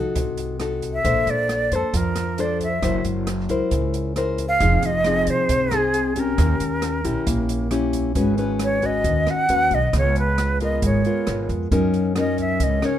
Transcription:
Already playing: nylon-string guitar F3 D#4 F#4 A4
0.15 upright bass C2, nylon-string guitar C3, kick, closed hi-hat
0.37 closed hi-hat
0.60 nylon-string guitar D#4 F#4 A4, cross-stick, closed hi-hat
0.82 kick, closed hi-hat
0.93 flute E5
1.04 upright bass A#1, nylon-string guitar A#3 D4 A4 C5, kick, closed hi-hat
1.27 upright bass A#1, flute D5, closed hi-hat
1.49 cross-stick, closed hi-hat
1.71 upright bass F2, nylon-string guitar D4 C5, kick, closed hi-hat
1.75 flute A4
1.94 upright bass F2, nylon-string guitar F3, flute A#4, kick, closed hi-hat
2.16 cross-stick, closed hi-hat
2.38 nylon-string guitar D4 A4 C5, flute D5, closed hi-hat
2.60 flute E5, kick, closed hi-hat
2.82 upright bass F#1, nylon-string guitar F#3 E4 A#4 C5, kick, cross-stick, closed hi-hat
3.05 upright bass F#1, closed hi-hat
3.27 cross-stick, closed hi-hat
3.49 upright bass C#2, nylon-string guitar E4 A#4 C5, kick, closed hi-hat
3.71 upright bass C#2, nylon-string guitar C#3, kick, closed hi-hat
3.94 closed hi-hat
4.16 nylon-string guitar E4 A#4 C5, cross-stick, closed hi-hat
4.38 kick, closed hi-hat
4.48 flute F5
4.60 upright bass F1, nylon-string guitar F3 C4 D#4 G#4, kick, closed hi-hat
4.82 upright bass F1, flute D#5, closed hi-hat
5.04 nylon-string guitar C4 D#4 G#4, cross-stick, closed hi-hat
5.27 upright bass C2, flute C5, kick, closed hi-hat
5.49 upright bass C2, nylon-string guitar C3, kick, closed hi-hat
5.71 nylon-string guitar C4 D#4 G#4, cross-stick, closed hi-hat
5.75 flute G#4
5.94 closed hi-hat
6.16 nylon-string guitar C#4 G4, flute A#4, kick, closed hi-hat
6.38 upright bass D#2, nylon-string guitar D#3, kick, cross-stick, closed hi-hat
6.60 upright bass D#2, closed hi-hat
6.82 cross-stick, closed hi-hat
7.04 upright bass A#1, nylon-string guitar C#4 E4 G4, kick, closed hi-hat
7.27 upright bass A#1, nylon-string guitar A#3, kick, closed hi-hat
7.49 closed hi-hat
7.71 nylon-string guitar C#4 E4 G4, cross-stick, closed hi-hat
7.93 kick, closed hi-hat
8.15 upright bass G#1, nylon-string guitar G#3 C#4 F#4 B4, kick, closed hi-hat
8.38 nylon-string guitar C#4 F#4 B4, closed hi-hat
8.59 cross-stick, closed hi-hat
8.64 flute C#5
8.82 nylon-string guitar C#4 F#4 B4, flute D#5, kick, closed hi-hat
9.04 upright bass D#2, nylon-string guitar D#3, kick, closed hi-hat
9.27 flute F#5, cross-stick, closed hi-hat
9.49 upright bass D#2, nylon-string guitar C#4 F#4 B4, closed hi-hat
9.71 upright bass B1, flute D#5, kick, closed hi-hat
9.93 upright bass C#2, nylon-string guitar C#3 B3 F4, kick, cross-stick, closed hi-hat
9.98 flute C#5
10.16 flute B4, closed hi-hat
10.38 cross-stick, closed hi-hat
10.60 nylon-string guitar B3 F4 A#4, flute D#5, kick, closed hi-hat
10.82 upright bass G#1, nylon-string guitar G#3, flute C#5, kick, closed hi-hat
11.05 nylon-string guitar B3 F4 A#4, closed hi-hat
11.27 upright bass G#1, cross-stick, closed hi-hat
11.49 upright bass F2, kick, closed hi-hat
11.71 upright bass F#2, nylon-string guitar F#3 C#4 D#4 A#4, kick, closed hi-hat
11.94 closed hi-hat
12.16 nylon-string guitar C#4 D#4 A#4, flute D#5, cross-stick, closed hi-hat
12.38 flute E5, kick, closed hi-hat
12.60 upright bass C#2, nylon-string guitar C#3, flute D#5, kick, closed hi-hat
12.82 nylon-string guitar C#4 D#4 A#4, flute C#5, cross-stick, closed hi-hat

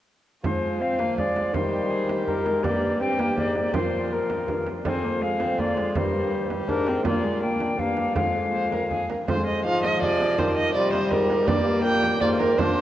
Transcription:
0.43 bassoon F3, viola G#3, violin F4, recorder C5, frame drum
0.80 viola C4, recorder F5
0.99 viola A#3, frame drum
1.17 viola G#3, recorder D5, frame drum
1.36 frame drum
1.53 bassoon D#3, viola G3, violin G4, recorder C5, frame drum
1.90 violin G#4
2.09 violin G4, frame drum
2.26 viola G3, recorder A#4, frame drum
2.46 viola G#3, frame drum
2.63 bassoon G2, viola A#3, violin G4, recorder D5, frame drum
3.00 viola C4, violin G4, recorder G5
3.19 viola A#3, frame drum
3.37 bassoon G#2, viola A#3, recorder D5, frame drum
3.55 frame drum
3.73 bassoon A#2, viola F3, violin F4, recorder C5, frame drum
4.13 recorder A#4
4.30 frame drum
4.48 bassoon G2, frame drum
4.67 frame drum
4.85 bassoon F2, viola C4, violin G#4, recorder C5 D5, frame drum
5.04 viola A#3
5.22 viola G#3, violin G#4, recorder F5
5.40 viola C4, frame drum
5.58 viola A#3, violin F4, recorder D5, frame drum
5.77 viola G#3, frame drum
5.95 bassoon G2, viola G3, violin A#4, recorder C5, frame drum
6.32 violin G4
6.50 frame drum
6.68 bassoon G#2, viola D4, recorder A#4, frame drum
6.87 viola C4, frame drum
7.04 bassoon A#2, viola A#3, violin F4, recorder D5, frame drum
7.23 viola G#3
7.40 viola A#3, violin D4, recorder G5
7.60 frame drum
7.78 bassoon G2, viola A#3, violin D4, recorder F5, frame drum
7.97 frame drum
8.15 bassoon F2, viola G#3, violin F4, recorder F5, frame drum
8.53 violin C5
8.72 violin A#4, frame drum
8.91 violin G#4, frame drum
9.09 violin A#4, frame drum
9.28 bassoon F2, viola G#3, recorder F4, violin C5, frame drum
9.46 violin D#5
9.64 bassoon G#2, viola F3, recorder F4, violin F5
9.83 violin D#5, frame drum
10.01 bassoon C3, recorder G#4, violin D5, frame drum
10.21 frame drum
10.38 bassoon D#3, recorder G4, violin C5, frame drum
10.57 violin D#5
10.74 bassoon C3, viola G3, recorder F4, violin D5
10.93 violin C5, frame drum
11.10 bassoon G#2, recorder G4, violin A#4, frame drum
11.30 frame drum
11.47 bassoon G2, viola A#3, violin D5, frame drum
11.84 bassoon A#2, recorder G4, violin G5
12.03 frame drum
12.21 bassoon G#2, viola A#3, recorder F4, violin D5, frame drum
12.39 violin A#4, frame drum
12.58 bassoon A#2, viola D4, recorder F4, violin C5, frame drum

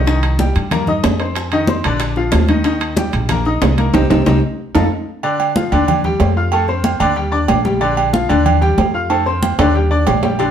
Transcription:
Already playing: upright bass C2
0.06 upright piano D#3 D#4 D#5, high bongo, high conga, high timbale
0.23 high bongo, high conga, high timbale
0.39 upright piano G3 G4 G5, high bongo, high conga, low timbale
0.55 upright bass G2, high bongo, high conga, high timbale
0.71 upright piano A#3 A#4 A#5, high bongo, high conga, low conga, high timbale
0.87 upright piano D#4 D#5 D#6, high bongo, high conga, low conga
1.04 upright bass F2, high bongo, low bongo, high conga, high timbale, low timbale
1.20 upright piano C4 C5 C6, high timbale
1.35 high bongo, high conga, high timbale
1.52 upright piano D#3 D#4 D#5, high bongo, high conga, high timbale
1.67 upright piano C4 C5 C6, high bongo, high conga, low timbale
1.84 upright bass A#1, upright piano D3 D4 D5, high bongo, high timbale
2.00 high bongo, high conga, high timbale
2.16 upright piano F3 F4 F5, high bongo, high conga
2.32 upright bass D#2, high bongo, low bongo, high conga, high timbale, low timbale
2.48 upright piano D#3 D#4 D#5, high conga, high timbale
2.64 upright piano D#3 D#4 D#5, high bongo, high conga, high timbale
2.80 high bongo, high conga, high timbale
2.97 upright piano G3 G4 G5, high bongo, high conga, low timbale
3.13 upright bass A#1, high bongo, high conga, high timbale
3.29 upright piano A#3 A#4 A#5, high bongo, high conga, low conga, high timbale
3.45 upright piano D#4 D#5 D#6, high bongo, high conga
3.61 upright bass C2, high bongo, low bongo, high conga, high timbale, low timbale
3.78 upright piano A#3 A#4 A#5, high conga, high timbale
3.94 upright bass C2, upright piano C4 D#4 G4, low bongo, high conga, high timbale
4.10 upright bass C2, upright piano C4 D#4 G4, low bongo, high conga, high timbale
4.26 upright bass C2, upright piano C4 D#4 G4, low bongo, high conga, high timbale
4.75 upright bass F2, upright piano D#4 F4 A4, low bongo, high conga, high timbale
5.23 upright piano D3 D4 D5, high conga, low agogo
5.40 high conga, low agogo
5.56 upright piano F3 F4 F5, high conga, low timbale
5.72 upright bass D#2, upright piano D3 D4 D5, high conga, low agogo
5.88 high conga, low conga, low agogo
6.04 upright piano G3 G4 G5, high conga, low conga
6.20 upright bass F2, high conga, low timbale, low agogo
6.37 upright piano F4 F5 F6
6.52 upright piano A3 A4 A5, high conga, low agogo
6.68 upright piano C4 C5 C6, high conga
6.84 high conga, low timbale, low agogo
7.00 upright bass D#2, upright piano D3 D4 D5, low agogo
7.16 upright piano G3 G4 G5, high conga
7.32 upright piano D4 D5 D6, high conga
7.48 upright bass A#1, high conga, low timbale, low agogo
7.65 upright piano G3 G4 G5, high conga
7.81 upright piano D3 D4 D5, high conga, low agogo
7.97 high conga, low agogo
8.13 upright piano F3 F4 F5, high conga, low timbale
8.29 upright bass D#2, upright piano D3 D4 D5, high conga, low agogo
8.46 high conga, low conga, low agogo
8.61 upright piano G3 G4 G5, high conga, low conga
8.78 upright bass F2, high conga, low timbale, low agogo
8.94 upright piano F4 F5 F6
9.10 upright piano A3 A4 A5, high conga, high timbale, low agogo
9.26 upright piano C4 C5 C6, high conga
9.43 high conga, low agogo
9.59 upright bass D#2, upright piano D3 D4 D5, low timbale, low agogo
9.75 upright piano G3 G4 G5, high conga
9.91 upright piano D4 D5 D6, high conga
10.07 upright bass A#1, high conga, low timbale, low agogo
10.23 upright piano G3 G4 G5, high conga, low timbale
10.39 upright piano D3 D4 D5, cowbell, high conga, low agogo

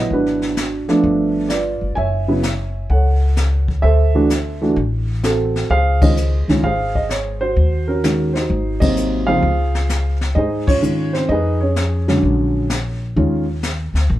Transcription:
Already playing: grand piano B2 F#3 B3 E4 D#5
0.10 upright bass G#1, grand piano D4 F#4 B4, brush sweep, kick
0.26 snare
0.42 snare
0.57 snare, hi-hat pedal
0.88 grand piano F3 A3 B3 D4, muted upright bass stroke, snare
1.03 upright bass G1, brush sweep, kick
1.49 grand piano F4 B4 D5, snare, hi-hat pedal
1.81 upright bass G1
1.95 upright bass F#1, grand piano C#5 E5 G#5, brush sweep, kick
2.28 grand piano C#3 F#3 B3 E4
2.43 snare, hi-hat pedal
2.90 upright bass C#2, grand piano A4 C#5 F#5, brush sweep, kick
3.37 snare, hi-hat pedal
3.68 kick
3.82 upright bass D2, grand piano A4 C5 E5, brush sweep, kick
4.15 grand piano E3 A3 D4 F#4
4.30 snare, hi-hat pedal
4.61 grand piano E3 A3 D4 F#4
4.76 upright bass A1, brush sweep, kick
5.23 grand piano C4 F#4 A4, snare, hi-hat pedal
5.56 snare
5.70 upright bass C#2, grand piano G#4 C5 F5, brush sweep, kick
6.02 grand piano D#3 G#3 C#4 F4 G#4 C5 D#5, kick, ride
6.17 hi-hat pedal
6.48 upright bass C2, grand piano D#3 G#3 C#4 F4, snare
6.63 upright bass G#1, grand piano G#4 C5 F5, brush sweep, kick
6.95 grand piano D#5, kick
7.10 grand piano C#5, snare, hi-hat pedal
7.41 grand piano F#4 C5
7.56 upright bass D#2, brush sweep, kick
7.88 grand piano C#4 F#4 A#4
8.03 grand piano D#3 G#3 C#4 F#4, snare, hi-hat pedal
8.33 grand piano D#4 F#4 C5, snare
8.50 upright bass G#1, brush sweep, kick
8.80 grand piano C3 F#3 A#3 C4 D#4 C5 D#5, kick, ride
8.96 hi-hat pedal
9.27 grand piano C#2 C3 F3 A#3 D#4 F4 G#4 C5 F5
9.43 upright bass C#2, brush sweep, kick
9.75 snare
9.89 snare, hi-hat pedal
10.21 snare
10.35 upright bass G#2, grand piano D#4 G#4 C5 D#5, brush sweep, kick
10.67 grand piano C#4 F4 C#5, kick, crash
10.82 grand piano D#3 G#3 C#4 F4, hi-hat pedal
11.13 grand piano C4 C5, snare
11.29 upright bass F2, grand piano D#4 G#4 B4 D#5, brush sweep, kick
11.60 grand piano C#4 G#4 C#5
11.76 snare, hi-hat pedal
12.08 grand piano D3 F#3 G#3 C#4, snare
12.23 upright bass A#1, brush sweep, kick
12.70 snare, hi-hat pedal
13.16 upright bass D#2, grand piano D#3 G#3 C#4 F4, brush sweep, kick
13.63 snare, hi-hat pedal
13.94 upright bass D2, snare
14.10 upright bass A#1, brush sweep, kick

